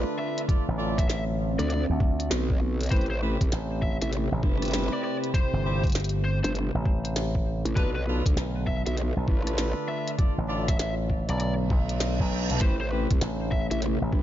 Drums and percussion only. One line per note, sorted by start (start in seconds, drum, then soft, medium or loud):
0.19 cross-stick medium
0.38 closed hi-hat medium
0.49 kick loud
0.49 closed hi-hat medium
0.98 kick loud
0.98 snare soft
0.98 closed hi-hat medium
1.10 snare loud
1.10 closed hi-hat medium
1.59 cross-stick soft
1.59 closed hi-hat medium
1.70 closed hi-hat medium
2.00 kick loud
2.20 closed hi-hat medium
2.31 snare loud
2.31 closed hi-hat medium
2.50 kick medium
2.81 closed hi-hat medium
2.83 closed hi-hat medium
2.86 closed hi-hat soft
2.89 kick loud
2.89 closed hi-hat soft
2.92 closed hi-hat medium
2.96 closed hi-hat soft
3.01 closed hi-hat soft
3.06 closed hi-hat soft
3.41 kick loud
3.41 closed hi-hat medium
3.52 snare loud
3.52 closed hi-hat medium
3.82 kick medium
4.02 closed hi-hat medium
4.13 snare soft
4.13 closed hi-hat medium
4.43 kick loud
4.62 cross-stick medium
4.62 closed hi-hat medium
4.65 closed hi-hat soft
4.68 closed hi-hat soft
4.71 snare loud
4.71 closed hi-hat soft
4.74 closed hi-hat medium
4.79 closed hi-hat soft
4.83 closed hi-hat soft
4.89 closed hi-hat soft
5.04 cross-stick medium
5.24 closed hi-hat medium
5.34 kick loud
5.34 closed hi-hat medium
5.84 kick loud
5.84 closed hi-hat soft
5.87 closed hi-hat soft
5.90 closed hi-hat soft
5.92 snare loud
5.92 closed hi-hat soft
5.95 closed hi-hat medium
6.00 closed hi-hat soft
6.04 closed hi-hat medium
6.09 closed hi-hat medium
6.44 cross-stick soft
6.44 closed hi-hat medium
6.55 closed hi-hat medium
6.86 kick loud
7.05 closed hi-hat medium
7.16 snare loud
7.16 closed hi-hat medium
7.35 kick medium
7.66 closed hi-hat medium
7.76 kick loud
7.76 closed hi-hat medium
8.26 kick loud
8.26 closed hi-hat medium
8.37 snare loud
8.37 closed hi-hat medium
8.67 kick medium
8.87 closed hi-hat medium
8.97 snare soft
8.97 closed hi-hat medium
9.28 kick loud
9.47 cross-stick medium
9.47 closed hi-hat medium
9.58 snare loud
9.58 closed hi-hat medium
9.88 cross-stick medium
10.08 closed hi-hat medium
10.19 kick loud
10.19 closed hi-hat medium
10.68 kick loud
10.68 snare soft
10.68 closed hi-hat medium
10.79 snare loud
10.79 closed hi-hat medium
11.10 kick medium
11.29 cross-stick soft
11.29 closed hi-hat medium
11.40 closed hi-hat medium
11.70 kick loud
11.89 closed hi-hat medium
12.00 snare loud
12.00 closed hi-hat medium
12.20 kick medium
12.50 closed hi-hat medium
12.61 kick loud
12.61 closed hi-hat medium
13.11 kick loud
13.11 closed hi-hat medium
13.21 snare loud
13.21 closed hi-hat medium
13.52 kick medium
13.71 closed hi-hat medium
13.82 snare soft
13.82 closed hi-hat medium
14.13 kick loud